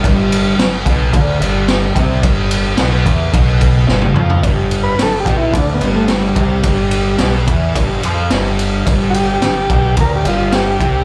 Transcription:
<<
  \new Staff \with { instrumentName = "Transistor combo organ" } { \time 4/4 \key g \mixolydian \tempo 4 = 109 r1 | r1 | \tuplet 3/2 { r4 b'8 a'8 g'8 e'8 d'8 b8 a8 g8 g4~ } | g4~ g16 r2 r8. |
r8 <fis' g'>4. bes'16 g'16 f'8 g'4 | }
  \new Staff \with { instrumentName = "Distorted electric guitar" } { \clef bass \time 4/4 \key g \mixolydian g,4 r8 b,8 d8 g,4 c8 | g,4 b,8 e8 b,4 g,8 f8 | g,4 r8 b,8 d8 g,4 c8 | g,4 b,8 e8 g,8 f8 g,4 |
g,4 r8 b,8 d8 g,4 c8 | }
  \new Staff \with { instrumentName = "Analog synth bass" } { \clef bass \time 4/4 \key g \mixolydian g,,4 g,,8 b,,8 d,8 g,,4 c,8 | g,,4 b,,8 e,8 b,,4 g,,8 f,8 | g,,4 g,,8 b,,8 d,8 g,,4 c,8 | g,,4 b,,8 e,8 g,,8 f,8 g,,4 |
g,,4 g,,8 b,,8 d,8 g,,4 c,8 | }
  \new DrumStaff \with { instrumentName = "Drums" } \drummode { \time 4/4 <bd cymr>8 cymr8 <cymr sn>8 <bd cymr>8 <bd cymr>8 cymr8 <cymr sn>8 <bd cymr>8 | <bd cymr>8 cymr8 <cymr sn>8 <bd cymr>8 <bd cymr>8 <bd cymr>8 sn16 tommh16 toml16 tomfh16 | <bd cymr>8 cymr8 <cymr sn>8 <bd cymr>8 <bd cymr>8 cymr8 <cymr sn>8 <bd cymr>8 | <bd cymr>8 cymr8 <cymr sn>8 <bd cymr>8 <bd cymr>8 cymr8 <cymr sn>8 cymr8 |
<bd cymr>8 cymr8 <cymr sn>8 <bd cymr>8 <bd cymr>8 cymr8 <cymr sn>8 <bd cymr>8 | }
>>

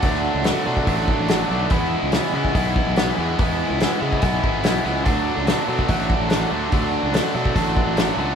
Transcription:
<<
  \new Staff \with { instrumentName = "Overdriven electric guitar" } { \clef bass \time 4/4 \key d \lydian \tempo 4 = 144 <d fis a d'>4 <d fis a d'>8 <d fis a d'>8 <d fis a d'>4 <d fis a d'>8 <d fis a d'>8 | <e gis b e'>4 <e gis b e'>8 <e gis b e'>8 <e gis b e'>4 <e gis b e'>8 <e gis b e'>8 | <e gis b e'>4 <e gis b e'>8 <e gis b e'>8 <e gis b e'>4 <e gis b e'>8 <e gis b e'>8 | <d fis a d'>4 <d fis a d'>8 <d fis a d'>8 <d fis a d'>4 <d fis a d'>8 <d fis a d'>8 |
<d fis a d'>4 <d fis a d'>8 <d fis a d'>8 <d fis a d'>4 <d fis a d'>8 <d fis a d'>8 | }
  \new Staff \with { instrumentName = "Fingered electric bass" } { \clef bass \time 4/4 \key d \lydian d,8. cis,8 r16 b,8 a,,8. a,,8. b,,8 | e,8. cis,8 r16 cis8 b,,8. b,,8. e,8 | e,8. cis,8 r16 cis8 b,,8 gis,,8 b,,8 cis,8 | d,8. cis,8 r16 b,8 a,,8. a,,8. d,8 |
d,8. cis,8 r16 b,8 a,,8. a,,8. cis,8 | }
  \new DrumStaff \with { instrumentName = "Drums" } \drummode { \time 4/4 <hho bd>4 <hho sn>8. bd16 <hho bd>8 bd8 <hho sn>4 | <hho bd>4 <hho sn>8. bd16 <hho bd>8 bd8 <hho sn>4 | <hho bd>4 <hho sn>8. bd16 <hho bd>8 bd8 <hho sn>4 | <hho bd>4 <hho sn>8. bd16 <hho bd>8 bd8 <hho sn>4 |
<hho bd>4 <hho sn>8. bd16 <hho bd>8 bd8 <hho sn>4 | }
>>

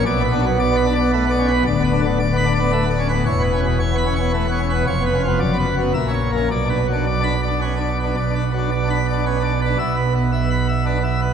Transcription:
<<
  \new Staff \with { instrumentName = "Pipe organ" } { \time 3/4 \key b \minor \tempo 4 = 112 << { r4 \tuplet 3/2 { r8 b''8 r8 } r4 | r4 \tuplet 3/2 { r8 b''8 r8 } r4 | r4 \tuplet 3/2 { r8 b''8 r8 } r4 | cis''8 r8 d''8 r8 e''8 r8 |
r4 \tuplet 3/2 { r8 b''8 r8 } r4 | r4 \tuplet 3/2 { r8 b''8 r8 } r4 | r4 \tuplet 3/2 { r8 b''8 r8 } r4 | } \\ { \tuplet 3/2 { d''8 b'8 fis8 d''8 r8 d''8 b'8 d''8 b'8 } | \tuplet 3/2 { d''8 b'8 d8 d''8 r8 d''8 b'8 d''8 b'8 } | \tuplet 3/2 { cis''8 b'8 b,8 cis''8 r8 cis''8 b'8 cis''8 b'8 } | \tuplet 3/2 { r8 b'8 eis8 r8 b'8 fis8 r8 cis''8 ais8 } |
\tuplet 3/2 { d''8 b'8 fis8 d''8 r8 d''8 b'8 d''8 b'8 } | \tuplet 3/2 { d''8 b'8 fis8 d''8 r8 d''8 b'8 d''8 b'8 } | \tuplet 3/2 { e''8 b'8 b8 e''8 r8 e''8 b'8 e''8 b'8 } | } >> }
  \new Staff \with { instrumentName = "Pipe organ" } { \time 3/4 \key b \minor << { b,16 b16 d'16 b16 r16 b16 d'16 b16 a16 b16 cis'16 b16 | d,16 b16 d'16 b16 r16 b16 d'16 b16 a16 b16 cis'16 b16 | e,16 b16 cis'16 b16 r16 b16 cis'16 b16 a16 b16 cis'16 b16 | eis,16 b16 cis'16 b16 fis,16 b16 r16 b16 ais,16 cis'16 r16 cis'16 |
b,16 d'16 r16 d'16 r16 d'16 r16 d'16 cis'16 d'16 r16 d'16 | b,16 d'16 r16 d'16 r16 d'16 r16 d'16 cis'16 d'16 r16 d'16 | b,2 d'16 r8. | } \\ { b,,2. | d,,2. | e,,2. | eis,,4 fis,,4 ais,,4 |
b,,2. | b,,2. | b,,2. | } >> }
>>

